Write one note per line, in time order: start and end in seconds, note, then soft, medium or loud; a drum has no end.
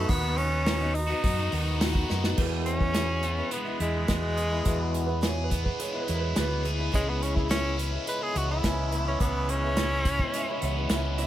0.00 0.11 A3 medium
0.00 2.04 D#4 medium
0.00 0.11 F#4 medium
0.00 2.04 F#4 medium
0.00 2.05 B4 medium
0.09 1.12 D#2 loud
0.09 0.37 D#3 medium
0.09 0.39 B3 medium
0.09 0.38 B3 medium
0.09 0.38 D#4 medium
0.09 0.39 F#4 medium
0.09 kick loud
0.09 open hi-hat medium
0.23 0.65 B3 medium
0.23 0.66 D#4 medium
0.23 0.67 F#4 medium
0.37 0.65 D#3 medium
0.37 0.66 B3 medium
0.37 0.96 C#4 loud
0.37 0.67 D#4 medium
0.37 0.68 F#4 medium
0.37 open hi-hat medium
0.66 0.80 D#3 medium
0.66 0.81 B3 medium
0.66 0.81 D#4 medium
0.66 0.79 F#4 medium
0.66 snare loud
0.66 open hi-hat medium
0.80 0.95 B3 soft
0.80 0.95 D#4 medium
0.80 0.94 F#4 medium
0.93 1.09 D#3 medium
0.93 1.10 B3 medium
0.93 1.80 D#4 medium
0.93 muted overdriven electric guitar stroke soft
0.93 open hi-hat medium
0.97 1.09 D#4 medium
0.97 1.07 F#4 medium
1.08 1.52 B3 soft
1.08 1.52 D#4 medium
1.08 1.51 F#4 medium
1.24 1.49 F#2 medium
1.24 kick loud
1.24 open hi-hat medium
1.37 1.51 B3 medium
1.37 1.52 D#4 medium
1.37 1.52 F#4 medium
1.52 2.03 D#2 medium
1.52 1.80 D#3 medium
1.52 1.81 B3 medium
1.52 1.81 D#4 medium
1.52 1.82 F#4 medium
1.52 open hi-hat medium
1.81 2.08 D#3 medium
1.81 2.09 B3 medium
1.81 2.10 D#4 medium
1.81 2.10 F#4 medium
1.81 snare loud
1.81 open hi-hat medium
1.93 2.08 B3 medium
1.93 2.09 D#4 medium
1.93 2.10 F#4 medium
1.93 kick medium
2.09 2.35 F#2 medium
2.09 2.23 D#3 medium
2.09 2.24 B3 medium
2.09 2.24 D#4 medium
2.09 2.23 F#4 medium
2.09 snare medium
2.24 2.38 B3 medium
2.24 2.39 D#4 medium
2.24 2.38 F#4 medium
2.24 snare medium
2.36 3.40 E2 medium
2.36 2.80 E2 medium
2.36 2.81 B2 medium
2.36 2.81 E3 medium
2.36 2.81 G#3 medium
2.36 2.80 B3 medium
2.36 4.61 E4 medium
2.36 2.79 E4 medium
2.36 4.61 G#4 medium
2.36 4.62 B4 medium
2.36 kick loud
2.36 crash loud
2.66 3.49 C#4 loud
2.66 closed hi-hat medium
2.80 2.95 E3 soft
2.80 2.95 G#3 soft
2.80 2.95 B3 medium
2.80 2.94 E4 soft
2.80 kick medium
2.94 3.23 E2 medium
2.94 3.23 B2 medium
2.94 3.22 E3 medium
2.94 3.23 G#3 medium
2.94 3.24 B3 medium
2.94 3.24 E4 medium
2.94 4.36 G#4 medium
2.94 snare loud
2.94 closed hi-hat medium
3.23 3.37 E3 medium
3.23 3.38 G#3 medium
3.23 3.37 B3 medium
3.23 3.36 E4 medium
3.23 closed hi-hat medium
3.37 3.67 E3 soft
3.37 3.66 G#3 soft
3.37 3.65 B3 soft
3.37 3.64 E4 soft
3.51 5.79 G#3 medium
3.51 3.80 B3 medium
3.51 closed hi-hat medium
3.65 4.07 E3 soft
3.65 4.07 G#3 soft
3.65 4.08 B3 soft
3.65 4.08 E4 medium
3.80 4.06 E2 medium
3.80 4.08 G#3 medium
3.80 6.07 E4 medium
3.80 closed hi-hat medium
4.08 4.37 E2 medium
4.08 4.60 E2 medium
4.08 4.37 B2 medium
4.08 4.35 E3 medium
4.08 4.36 G#3 medium
4.08 5.20 G#3 loud
4.08 4.38 B3 medium
4.08 4.38 E4 medium
4.08 kick medium
4.08 snare loud
4.08 closed hi-hat medium
4.36 4.51 E3 medium
4.36 4.51 G#3 medium
4.36 4.50 B3 medium
4.36 4.49 E4 medium
4.36 5.23 G#4 medium
4.36 closed hi-hat medium
4.50 4.64 E3 soft
4.50 4.64 G#3 soft
4.50 4.65 B3 medium
4.50 4.65 E4 soft
4.64 5.07 E2 medium
4.64 5.68 E2 loud
4.64 5.08 B2 medium
4.64 5.08 E3 medium
4.64 5.08 G#3 medium
4.64 5.08 B3 medium
4.64 6.05 E4 medium
4.64 5.06 E4 medium
4.64 6.05 G#4 medium
4.64 6.05 B4 medium
4.64 kick loud
4.64 closed hi-hat medium
4.94 closed hi-hat medium
5.06 5.21 G#3 soft
5.06 5.21 B3 medium
5.06 5.22 E4 medium
5.06 5.23 B4 medium
5.11 5.21 E3 soft
5.21 5.50 E2 medium
5.21 5.50 B2 medium
5.21 5.49 E3 medium
5.21 5.50 G#3 medium
5.21 5.51 B3 medium
5.21 5.51 E4 medium
5.21 6.64 G#4 medium
5.21 snare loud
5.21 closed hi-hat medium
5.26 5.43 C#5 medium
5.44 5.61 B4 medium
5.50 5.93 E3 medium
5.50 5.94 G#3 medium
5.50 5.93 B3 medium
5.50 5.92 E4 medium
5.50 kick medium
5.50 closed hi-hat medium
5.64 5.81 B4 medium
5.64 kick medium
5.79 8.06 G#3 medium
5.79 5.99 C#5 medium
5.79 closed hi-hat medium
5.93 6.35 E3 medium
5.93 6.36 G#3 soft
5.93 6.36 B3 medium
5.93 6.36 E4 medium
6.00 6.18 B4 medium
6.07 6.34 E2 medium
6.07 8.35 E4 medium
6.07 6.91 E4 medium
6.07 6.94 G#4 soft
6.07 6.93 C#5 medium
6.07 closed hi-hat medium
6.15 6.18 A#4 medium
6.20 6.37 B4 medium
6.35 6.88 D2 medium
6.35 6.64 E2 medium
6.35 6.64 B2 medium
6.35 6.62 E3 medium
6.35 6.63 G#3 loud
6.35 6.64 B3 loud
6.35 6.65 E4 loud
6.35 6.65 B4 medium
6.35 snare loud
6.35 closed hi-hat medium
6.63 6.78 E3 medium
6.63 6.79 G#3 medium
6.63 6.78 B3 medium
6.63 6.76 E4 medium
6.63 7.49 G#4 medium
6.63 closed hi-hat medium
6.78 6.91 E3 soft
6.78 6.91 G#3 soft
6.78 6.92 B3 medium
6.78 6.92 E4 medium
6.91 7.96 C#2 medium
6.91 7.35 C#3 medium
6.91 7.35 E3 medium
6.91 7.36 G#3 medium
6.91 7.11 G#3 loud
6.91 7.35 B3 medium
6.91 9.16 E4 medium
6.91 7.33 E4 medium
6.91 9.16 B4 medium
6.91 9.17 C#5 medium
6.91 kick loud
6.91 closed hi-hat medium
7.09 7.24 B3 medium
7.23 7.36 C#4 medium
7.23 closed hi-hat medium
7.34 7.48 G#3 soft
7.34 7.49 B3 soft
7.34 7.49 E4 soft
7.34 7.49 E4 medium
7.34 kick medium
7.48 7.78 C#3 medium
7.48 7.75 E3 medium
7.48 7.76 G#3 medium
7.48 7.77 B3 medium
7.48 7.78 C#4 loud
7.48 7.78 E4 medium
7.48 snare loud
7.48 closed hi-hat medium
7.76 7.92 E3 medium
7.76 7.92 G#3 medium
7.76 7.93 B3 medium
7.76 8.63 C#4 medium
7.76 7.91 E4 medium
7.76 closed hi-hat medium
7.92 8.22 G#3 soft
7.92 8.21 B3 soft
7.92 8.18 E4 soft
8.07 10.33 G#3 medium
8.07 8.24 B4 medium
8.07 closed hi-hat medium
8.20 8.63 G#3 soft
8.20 8.64 B3 medium
8.20 8.63 E4 medium
8.20 8.39 G#4 loud
8.35 8.61 C#2 medium
8.35 9.77 B3 medium
8.35 8.50 F#4 medium
8.35 closed hi-hat medium
8.51 9.05 E4 medium
8.63 9.15 C#2 medium
8.63 8.92 C#3 medium
8.63 8.90 E3 medium
8.63 8.91 G#3 medium
8.63 8.92 B3 medium
8.63 10.04 C#4 medium
8.63 8.93 E4 medium
8.63 kick medium
8.63 snare loud
8.63 closed hi-hat medium
8.91 9.06 E3 medium
8.91 9.06 G#3 medium
8.91 9.06 B3 medium
8.91 9.04 E4 medium
8.91 closed hi-hat medium
9.05 9.20 G#3 soft
9.05 9.20 B3 medium
9.05 9.20 C#4 medium
9.05 9.20 E4 medium
9.19 10.22 C#2 medium
9.19 9.63 C#3 medium
9.19 9.63 E3 medium
9.19 9.63 G#3 medium
9.19 9.52 B3 medium
9.19 9.63 B3 medium
9.19 11.14 E4 medium
9.19 9.61 E4 medium
9.19 11.15 B4 medium
9.19 11.15 C#5 medium
9.19 kick loud
9.19 closed hi-hat medium
9.49 11.15 C#4 loud
9.49 closed hi-hat medium
9.62 9.77 G#3 soft
9.62 9.77 B3 soft
9.62 9.77 E4 soft
9.76 10.05 C#3 medium
9.76 10.04 E3 medium
9.76 10.05 G#3 medium
9.76 10.06 B3 medium
9.76 10.06 E4 medium
9.76 snare loud
9.76 closed hi-hat medium
10.05 10.19 E3 medium
10.05 10.20 G#3 medium
10.05 10.20 B3 medium
10.05 10.89 C#4 medium
10.05 10.19 E4 medium
10.05 kick medium
10.05 closed hi-hat medium
10.19 10.50 G#3 soft
10.19 10.48 B3 soft
10.19 10.47 E4 medium
10.19 kick medium
10.32 11.27 G#3 medium
10.32 10.61 C#5 medium
10.32 10.35 D#5 medium
10.32 closed hi-hat medium
10.37 10.62 E5 medium
10.48 10.78 G#3 soft
10.48 10.77 B3 medium
10.48 10.75 E4 medium
10.61 10.88 C#2 medium
10.61 11.27 B3 medium
10.61 10.88 C#5 medium
10.61 10.90 E5 medium
10.61 closed hi-hat medium
10.76 10.90 G#3 soft
10.76 10.90 B3 medium
10.76 10.90 E4 soft
10.90 11.27 C#2 medium
10.90 11.18 C#3 medium
10.90 11.17 E3 medium
10.90 11.18 G#3 medium
10.90 11.19 B3 loud
10.90 11.27 C#4 medium
10.90 11.20 E4 medium
10.90 11.18 C#5 medium
10.90 11.19 E5 medium
10.90 snare loud
10.90 closed hi-hat medium
11.16 11.27 E3 medium
11.16 11.27 G#3 medium
11.16 11.27 E4 medium
11.16 11.27 B4 soft
11.16 11.27 C#5 medium
11.16 11.19 D#5 medium
11.16 closed hi-hat medium
11.21 11.27 B3 medium
11.21 11.27 E4 medium
11.21 11.27 E5 medium